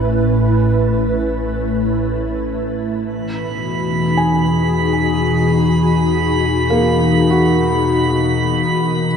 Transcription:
Already playing: A1 A2 A3 C#4 E4 B4
3.06 E2 E3 B5
3.14 B2
3.26 F#4
3.40 D#4
3.79 G#4
4.17 G#5
6.70 A#3
7.30 F#4
9.07 G3

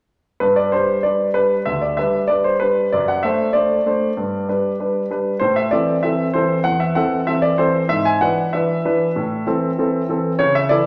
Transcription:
0.40 G2 B4
0.56 D5
0.72 G3 D4 B4 C5
1.03 G3 D4 B4 D5
1.34 G3 D4 B4
1.66 D2 E5
1.82 D5
1.97 G3 D4 B4 E5
2.28 G3 D4 B4 D5
2.44 C5
2.60 G3 D4 B4
2.92 F#2 D5
3.08 F#5
3.23 A3 D4 C5 E5
3.53 A3 D4 C5 D5
3.86 A3 D4 C5
4.17 G2
4.49 G3 D4 B4
4.80 G3 D4 B4
5.10 G3 D4 B4
5.40 A2 C5
5.56 E5
5.71 E3 C4 A4 D5
6.03 E3 C4 A4 E5
6.34 E3 C4 A4 C5
6.64 E2 F#5
6.80 E5
6.95 E3 C4 A4 F#5
7.27 E3 C4 A4 E5
7.42 D5
7.58 E3 C4 A4 C5
7.89 G#2 E5
8.05 G#5
8.21 E3 D4 B4 F#5
8.53 E3 D4 B4 E5
8.85 E3 D4 B4
9.16 A2
9.47 E3 C4 A4
9.78 E3 C4 A4
10.09 E3 C4 A4
10.39 C#3 C#5
10.55 E5
10.69 E3 E4 A4 D5

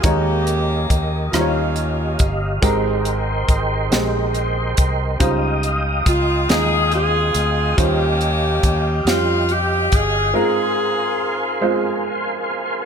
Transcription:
Already playing: D#5
0.02 D#2 D#3 G#3 A#3 C#4 D#4 G4 A#4 C#5, kick, closed hi-hat
0.47 closed hi-hat
0.87 D#2 G4, kick, closed hi-hat
1.32 D#2 D#3 G3 A#3 C#4 D#4 F4 G4 C5 F5, cross-stick, closed hi-hat
1.41 C#5
1.76 closed hi-hat
2.19 G1, kick, closed hi-hat
2.62 G#2 G#3 C4 G4 A#4 D#5 G5 C6, kick, closed hi-hat
3.05 closed hi-hat
3.48 G#1, kick, closed hi-hat
3.91 A#1 G#3 C4 G4 C5, snare, closed hi-hat
4.35 closed hi-hat
4.77 C2, kick, closed hi-hat
5.19 C#2 C#3 G3 D#4 F4 C5 D#5 F5 D#6, kick, closed hi-hat
5.63 closed hi-hat
6.06 C#2 F4, kick, closed hi-hat
6.49 D#2 G#3 D#4 F4 G#4, snare, closed hi-hat
6.92 C4 F4 G#4, closed hi-hat
7.34 D2, closed hi-hat
7.77 D#2 D#3 G3 A#3 C#4 F4 G4 C5, kick, closed hi-hat
8.21 closed hi-hat
8.63 D#2, kick, closed hi-hat
9.05 F2 G3 C#4 F4 G4, snare, closed hi-hat
9.49 G4, closed hi-hat
9.92 G1 G#4, kick, closed hi-hat
10.34 G#2 G#3 C4 F4 G#4 A#4 G#5 C6
11.61 G#3 C4 F4 C5

